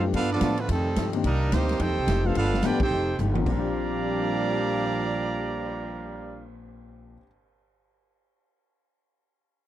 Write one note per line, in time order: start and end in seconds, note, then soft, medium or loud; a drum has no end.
0.00 0.12 F#2 loud
0.00 0.12 F3 medium
0.00 0.12 A3 medium
0.00 0.12 B3 medium
0.00 0.13 D4 medium
0.00 0.13 G4 medium
0.13 0.40 G2 loud
0.13 0.31 G3 soft
0.13 0.32 B3 medium
0.13 0.30 B3 medium
0.13 0.30 D4 loud
0.13 0.31 D4 medium
0.13 0.32 F4 medium
0.13 0.31 F4 medium
0.13 0.30 A4 loud
0.13 0.32 A4 medium
0.13 0.30 B4 loud
0.13 0.30 F5 loud
0.13 kick soft
0.13 ride medium
0.32 0.57 F3 medium
0.32 0.57 B3 medium
0.32 0.58 B3 medium
0.32 0.57 D4 loud
0.32 0.58 F4 medium
0.32 0.57 A4 medium
0.32 0.57 D5 loud
0.41 0.68 A2 medium
0.41 0.59 G3 medium
0.41 0.59 B3 medium
0.41 0.60 F4 medium
0.41 0.60 A4 medium
0.41 kick soft
0.41 snare medium
0.41 hi-hat pedal medium
0.41 ride medium
0.57 0.70 D3 medium
0.57 0.70 F3 medium
0.57 0.70 A3 medium
0.57 0.70 B3 medium
0.57 0.70 D4 medium
0.57 0.70 F4 medium
0.57 0.70 B4 medium
0.57 ride medium
0.69 0.96 F2 loud
0.69 1.11 C3 medium
0.69 1.11 D#3 medium
0.69 0.87 F3 soft
0.69 1.12 G3 medium
0.69 0.88 A3 medium
0.69 1.11 A3 medium
0.69 1.12 C4 medium
0.69 0.88 D#4 medium
0.69 1.12 D#4 medium
0.69 0.88 G4 medium
0.69 1.12 A4 loud
0.69 kick soft
0.69 ride medium
0.96 1.23 G2 medium
0.96 1.15 F3 medium
0.96 1.15 A3 medium
0.96 1.16 D#4 medium
0.96 1.16 G4 medium
0.96 kick soft
0.96 snare medium
0.96 hi-hat pedal medium
0.96 ride medium
1.13 1.23 D#3 medium
1.13 1.23 A#3 medium
1.13 1.24 C4 medium
1.13 1.24 D4 medium
1.13 1.24 G4 medium
1.13 ride medium
1.24 1.51 C2 loud
1.24 1.43 C3 soft
1.24 1.50 D#3 medium
1.24 1.43 D#3 medium
1.24 1.50 G3 medium
1.24 1.51 G3 medium
1.24 1.50 A#3 medium
1.24 1.44 A#3 medium
1.24 1.51 D4 medium
1.24 1.44 D4 medium
1.24 1.51 D#4 loud
1.24 1.51 A#4 loud
1.24 kick soft
1.24 ride medium
1.52 1.79 D2 loud
1.52 1.70 C3 medium
1.52 1.80 D#3 medium
1.52 1.71 D#3 medium
1.52 1.80 G3 medium
1.52 1.81 A#3 medium
1.52 1.71 A#3 medium
1.52 1.79 C4 medium
1.52 1.72 D4 medium
1.52 1.81 D#4 medium
1.52 1.81 G4 medium
1.52 1.81 C5 loud
1.52 kick soft
1.52 snare medium
1.52 hi-hat pedal medium
1.52 ride medium
1.61 snare soft
1.69 snare soft
1.69 ride medium
1.79 1.89 F2 loud
1.79 1.98 F3 medium
1.79 1.99 A3 medium
1.79 2.24 C4 medium
1.79 2.25 D#4 medium
1.79 1.99 D#4 medium
1.79 2.25 D#4 medium
1.79 2.25 G4 loud
1.79 1.99 G4 soft
1.79 2.25 A4 medium
1.79 2.25 C5 medium
1.79 2.26 G5 loud
1.79 kick soft
1.79 ride medium
1.89 1.97 D#2 medium
1.98 2.07 C2 medium
2.07 2.35 F1 loud
2.07 2.26 F3 medium
2.07 2.27 A3 medium
2.07 2.27 D#4 medium
2.07 2.27 G4 medium
2.07 kick soft
2.07 snare medium
2.07 hi-hat pedal medium
2.07 ride medium
2.24 2.34 F3 medium
2.24 2.35 A3 medium
2.24 2.36 A3 medium
2.24 2.35 B3 medium
2.24 2.36 C4 medium
2.24 2.35 D4 medium
2.24 2.36 D#4 medium
2.24 2.35 F4 medium
2.24 2.35 G4 medium
2.24 2.36 A4 medium
2.24 2.36 C5 medium
2.24 2.36 F5 medium
2.35 2.62 G1 loud
2.35 2.54 G3 soft
2.35 2.62 B3 medium
2.35 2.54 B3 medium
2.35 2.62 D4 medium
2.35 2.63 D4 loud
2.35 2.62 F4 medium
2.35 2.55 F4 medium
2.35 2.63 A4 loud
2.35 2.55 A4 medium
2.35 2.62 B4 loud
2.35 2.63 F5 loud
2.35 kick soft
2.35 ride medium
2.45 snare soft
2.54 snare medium
2.63 2.90 A1 medium
2.63 2.79 F3 medium
2.63 2.82 G3 medium
2.63 2.79 A3 medium
2.63 2.79 B3 medium
2.63 2.82 B3 medium
2.63 2.81 B3 medium
2.63 2.81 D4 medium
2.63 2.80 D4 medium
2.63 2.81 F4 medium
2.63 2.82 F4 medium
2.63 2.80 G4 medium
2.63 2.82 A4 medium
2.63 2.81 B4 medium
2.63 2.81 D5 medium
2.63 2.81 G5 loud
2.63 kick soft
2.63 snare medium
2.63 hi-hat pedal medium
2.63 ride medium
2.80 3.17 C4 medium
2.80 3.17 D#4 medium
2.80 3.18 D#4 medium
2.80 3.17 G4 medium
2.80 3.18 A4 medium
2.80 3.18 C5 medium
2.80 3.18 G5 loud
2.80 kick medium
2.80 crash medium
2.91 3.18 F1 loud
2.91 3.09 F3 soft
2.91 3.10 A3 soft
2.91 3.10 D#4 medium
2.91 3.11 G4 medium
3.19 3.46 G1 loud
3.19 3.37 F3 medium
3.19 3.38 A3 medium
3.19 3.38 D#4 medium
3.19 3.38 G4 medium
3.19 hi-hat pedal soft
3.19 mid tom medium
3.34 7.13 A#2 medium
3.34 3.46 F3 medium
3.34 3.39 A#3 medium
3.34 3.45 C4 soft
3.34 3.47 D4 medium
3.34 3.47 F4 medium
3.34 high tom medium
3.41 7.17 A#3 medium
3.46 7.15 A#1 loud
3.46 7.19 A#2 medium
3.46 6.46 A#2 loud
3.46 6.46 F3 loud
3.46 6.46 G3 loud
3.46 7.21 G3 medium
3.46 7.19 C4 medium
3.46 6.46 D4 loud
3.46 6.47 G4 medium
3.46 6.46 D5 medium
3.46 6.47 F5 medium
3.46 6.46 A#5 loud
3.46 kick medium
3.46 crash medium
3.53 7.23 C4 medium
3.53 7.22 D4 medium
3.53 7.24 D4 medium
3.59 7.26 G4 medium
3.64 cymbal swell medium